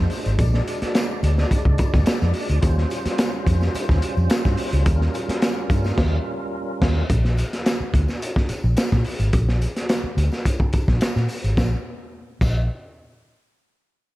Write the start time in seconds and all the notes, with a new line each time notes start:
Already playing: G#3 D4 C5
0.10 open hi-hat, tambourine
0.26 G#1, closed hi-hat, tambourine
0.39 A#1 D5, kick, closed hi-hat, tambourine
0.54 snare
0.67 closed hi-hat, tambourine
0.82 muted fingered electric bass stroke, snare, closed hi-hat
0.95 snare, closed hi-hat, tambourine
1.23 D2, closed hi-hat, tambourine
1.37 snare, tambourine
1.51 muted fingered electric bass stroke, kick, closed hi-hat, tambourine
1.65 C#2, kick
1.78 kick, closed hi-hat, tambourine
1.94 D2, kick, snare, tambourine
2.06 muted fingered electric bass stroke, snare, closed hi-hat, tambourine
2.21 F2, snare, tambourine
2.34 open hi-hat, tambourine
2.49 D2, closed hi-hat
2.61 D#2 G3 C#4 F4 C5, kick, closed hi-hat, tambourine
2.78 snare
2.90 closed hi-hat, tambourine
3.06 muted fingered electric bass stroke, snare, closed hi-hat
3.18 snare, closed hi-hat, tambourine
3.46 F2, kick, closed hi-hat, tambourine
3.61 snare, tambourine
3.74 muted fingered electric bass stroke, closed hi-hat, tambourine
3.89 D#2, kick, snare
4.02 closed hi-hat, tambourine
4.17 F2, tambourine
4.30 muted fingered electric bass stroke, snare, closed hi-hat, tambourine
4.45 G2, kick, snare, tambourine
4.57 open hi-hat, tambourine
4.73 C#2, closed hi-hat, tambourine
4.86 D#2 A#4, kick, closed hi-hat, tambourine
5.01 snare
5.14 closed hi-hat, tambourine
5.29 muted fingered electric bass stroke, snare, closed hi-hat
5.42 snare, closed hi-hat, tambourine
5.70 G2, kick, closed hi-hat, tambourine
5.84 snare, tambourine
5.98 D#2, kick, snare, crash
6.82 D#2, kick, snare, crash
7.10 A#1, kick, closed hi-hat, tambourine
7.25 snare
7.37 closed hi-hat, tambourine
7.53 snare, closed hi-hat
7.66 snare, closed hi-hat, tambourine
7.80 muted fingered electric bass stroke
7.94 D2, kick, closed hi-hat, tambourine
8.08 snare, tambourine
8.22 closed hi-hat, tambourine
8.36 kick, snare
8.49 muted fingered electric bass stroke, closed hi-hat, tambourine
8.64 A#1, tambourine
8.77 snare, closed hi-hat, tambourine
8.92 A#2, kick, snare
9.04 open hi-hat, tambourine
9.19 G#1, closed hi-hat, tambourine
9.33 A#1, kick, closed hi-hat, tambourine
9.49 snare
9.61 closed hi-hat, tambourine
9.76 snare, closed hi-hat
9.89 snare, closed hi-hat, tambourine
10.04 muted fingered electric bass stroke
10.17 D2, closed hi-hat, tambourine
10.32 snare, tambourine
10.45 kick, closed hi-hat, tambourine
10.60 kick
10.73 muted fingered electric bass stroke, kick, closed hi-hat, tambourine
10.88 A#1, kick, snare
11.01 snare, closed hi-hat, tambourine
11.16 A#2, snare, tambourine
11.29 open hi-hat, tambourine
11.44 G#1, closed hi-hat, tambourine
11.57 A#1, kick, snare, tambourine
12.41 A#1, kick, crash, tambourine